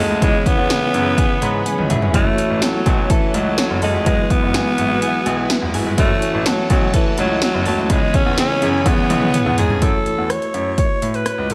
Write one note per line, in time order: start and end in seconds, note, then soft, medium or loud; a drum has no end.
0.00 0.22 E3 medium
0.00 0.21 G#3 loud
0.00 0.18 A3 medium
0.00 0.27 A3 medium
0.00 0.18 C#4 medium
0.00 0.46 C#4 medium
0.00 0.18 E4 medium
0.00 2.10 E4 medium
0.00 0.18 F#4 medium
0.00 0.19 F#4 medium
0.00 0.27 A4 medium
0.00 0.19 C#5 medium
0.00 0.20 C#5 medium
0.00 0.20 A5 medium
0.10 0.19 D2 medium
0.21 0.31 C#2 loud
0.21 0.90 C#3 medium
0.21 2.14 E3 medium
0.21 0.48 G#3 loud
0.21 2.09 B3 medium
0.21 2.10 C#4 medium
0.21 2.10 E4 medium
0.21 2.12 G#4 medium
0.21 2.10 G#4 medium
0.21 4.02 C#5 medium
0.21 2.11 C#5 medium
0.21 2.12 B5 medium
0.21 kick loud
0.21 closed hi-hat medium
0.46 1.90 B3 loud
0.46 0.94 C#4 medium
0.46 kick medium
0.46 closed hi-hat medium
0.58 0.67 E2 medium
0.70 1.17 G#4 medium
0.70 snare loud
0.70 closed hi-hat medium
0.70 tambourine medium
0.94 1.12 F#2 medium
0.94 1.66 C#4 medium
0.94 closed hi-hat medium
1.18 1.89 G#4 medium
1.18 kick loud
1.18 closed hi-hat medium
1.42 1.60 G#2 loud
1.42 2.19 B3 medium
1.42 1.64 B5 medium
1.42 closed hi-hat medium
1.66 2.19 C#4 medium
1.66 1.88 G#5 medium
1.66 closed hi-hat medium
1.66 high tom medium
1.78 1.87 C#2 medium
1.78 mid tom medium
1.90 1.99 G#1 medium
1.90 2.19 G#4 medium
1.90 2.12 E5 medium
1.90 closed hi-hat medium
1.90 mid tom loud
2.02 2.11 G1 medium
2.02 floor tom medium
2.13 2.23 F#1 loud
2.13 4.06 E3 medium
2.13 4.01 A3 medium
2.13 2.59 A3 loud
2.13 4.02 C#4 medium
2.13 9.78 E4 medium
2.13 4.02 E4 medium
2.13 5.94 F#4 medium
2.13 4.02 F#4 medium
2.13 4.03 C#5 medium
2.13 4.04 A5 medium
2.13 kick loud
2.13 closed hi-hat medium
2.38 2.85 C#4 medium
2.38 closed hi-hat medium
2.50 2.59 A1 medium
2.62 3.13 F#3 medium
2.62 3.09 A4 medium
2.62 snare loud
2.62 closed hi-hat loud
2.62 tambourine medium
2.86 3.04 B1 medium
2.86 3.57 C#4 medium
2.86 kick medium
2.86 closed hi-hat medium
3.10 3.37 E3 medium
3.10 3.81 A4 medium
3.10 kick loud
3.10 closed hi-hat medium
3.34 3.52 C#2 loud
3.34 3.82 F#3 loud
3.34 4.11 A3 medium
3.34 closed hi-hat medium
3.58 4.11 C#4 medium
3.58 snare loud
3.58 closed hi-hat medium
3.58 tambourine medium
3.70 3.79 F#1 medium
3.82 3.91 F#1 medium
3.82 4.05 G#3 loud
3.82 4.11 A4 medium
3.82 open hi-hat medium
3.94 4.03 F1 medium
4.05 4.15 E1 loud
4.05 4.74 E3 medium
4.05 5.98 F#3 medium
4.05 5.94 G#3 medium
4.05 4.33 G#3 loud
4.05 5.94 B3 medium
4.05 5.94 E4 medium
4.05 5.94 F#4 medium
4.05 5.96 B4 medium
4.05 5.95 B4 medium
4.05 5.96 G#5 medium
4.05 kick loud
4.05 closed hi-hat loud
4.30 5.75 B3 loud
4.30 4.78 E4 medium
4.30 kick loud
4.30 closed hi-hat medium
4.42 4.51 F#1 medium
4.54 5.01 G#4 medium
4.54 snare loud
4.54 closed hi-hat medium
4.54 tambourine medium
4.78 4.96 G#1 medium
4.78 5.50 E4 medium
4.78 closed hi-hat medium
5.02 5.73 G#4 medium
5.02 closed hi-hat medium
5.26 5.44 B1 medium
5.26 6.03 B3 medium
5.26 closed hi-hat medium
5.50 6.22 E4 medium
5.50 snare loud
5.50 closed hi-hat medium
5.50 tambourine medium
5.62 5.71 E1 medium
5.74 5.83 G#1 medium
5.74 6.03 G#4 medium
5.74 open hi-hat medium
5.86 5.95 G1 loud
5.97 6.07 F#1 loud
5.97 7.90 E3 medium
5.97 7.15 A3 medium
5.97 6.43 A3 loud
5.97 7.15 C#4 medium
5.97 7.16 E4 medium
5.97 7.88 F#4 medium
5.97 7.16 F#4 medium
5.97 7.88 C#5 medium
5.97 7.16 C#5 medium
5.97 7.88 A5 medium
5.97 kick loud
5.97 closed hi-hat loud
6.22 6.70 C#4 medium
6.22 closed hi-hat medium
6.34 6.43 A1 medium
6.46 6.69 F#3 medium
6.46 6.93 A4 medium
6.46 snare loud
6.46 closed hi-hat medium
6.46 tambourine medium
6.70 6.88 B1 medium
6.70 6.93 F#3 medium
6.70 7.42 C#4 medium
6.70 kick loud
6.70 closed hi-hat medium
6.94 7.17 E3 medium
6.94 7.65 A4 medium
6.94 kick loud
6.94 closed hi-hat medium
7.17 7.36 C#2 loud
7.17 7.41 F#3 medium
7.17 7.23 G#3 soft
7.17 7.95 A3 medium
7.17 7.88 C#4 soft
7.17 7.89 E4 soft
7.17 7.90 F#4 soft
7.17 7.90 D#5 medium
7.17 closed hi-hat medium
7.23 7.93 A3 medium
7.42 7.65 F#3 loud
7.42 8.14 C#4 medium
7.42 snare loud
7.42 closed hi-hat medium
7.42 tambourine medium
7.54 7.63 F#1 loud
7.66 7.75 D#2 medium
7.66 7.93 F#3 medium
7.66 7.95 A4 medium
7.66 open hi-hat medium
7.78 7.87 D2 medium
7.89 7.99 C#2 loud
7.89 8.58 C#3 medium
7.89 8.85 E3 medium
7.89 8.17 G#3 loud
7.89 8.83 B3 medium
7.89 8.84 C#4 medium
7.89 8.84 E4 medium
7.89 8.85 G#4 medium
7.89 8.84 G#4 medium
7.89 8.85 C#5 medium
7.89 9.80 B5 medium
7.89 kick loud
7.89 closed hi-hat loud
8.14 8.61 C#4 medium
8.14 8.39 C#4 loud
8.14 kick loud
8.14 closed hi-hat medium
8.26 8.35 E2 medium
8.38 8.89 C#4 loud
8.38 8.91 G#4 medium
8.38 snare loud
8.38 closed hi-hat medium
8.38 tambourine medium
8.62 8.80 F#2 medium
8.62 8.93 E3 loud
8.62 9.13 C#4 medium
8.62 8.93 C#4 medium
8.62 8.93 G#4 loud
8.62 closed hi-hat medium
8.85 9.04 E2 loud
8.85 10.37 E3 medium
8.85 9.54 E3 medium
8.85 9.80 B3 medium
8.85 9.58 B3 loud
8.85 9.80 C#4 medium
8.85 9.80 E4 medium
8.85 9.81 G#4 medium
8.85 9.80 G#4 medium
8.85 9.81 C#5 medium
8.85 kick loud
8.85 closed hi-hat medium
8.85 high tom medium
8.98 high tom medium
9.10 9.28 B1 loud
9.10 9.87 B3 medium
9.10 closed hi-hat medium
9.10 mid tom medium
9.22 mid tom medium
9.34 10.37 C#4 medium
9.34 closed hi-hat medium
9.34 mid tom loud
9.46 9.55 E2 loud
9.46 mid tom medium
9.58 9.67 G#2 medium
9.58 9.87 G#4 medium
9.58 9.84 G#4 medium
9.58 closed hi-hat medium
9.58 floor tom loud
9.70 9.79 G2 medium
9.70 floor tom medium
9.81 9.91 F#2 medium
9.81 11.54 A3 medium
9.81 11.54 E4 medium
9.81 11.54 F#4 medium
9.81 10.32 A4 medium
9.81 11.54 C#5 medium
9.81 kick loud
9.81 closed hi-hat medium
10.06 closed hi-hat medium
10.18 10.27 E2 medium
10.30 10.78 C#5 medium
10.30 cross-stick loud
10.30 closed hi-hat medium
10.42 closed hi-hat soft
10.54 10.72 F#2 medium
10.54 closed hi-hat medium
10.78 11.16 C#5 medium
10.78 kick medium
10.78 closed hi-hat medium
11.02 11.20 A2 medium
11.02 closed hi-hat medium
11.14 11.53 B4 medium
11.14 closed hi-hat soft
11.26 cross-stick loud
11.26 closed hi-hat medium
11.38 11.47 C#2 medium
11.50 11.54 G#2 medium
11.50 closed hi-hat medium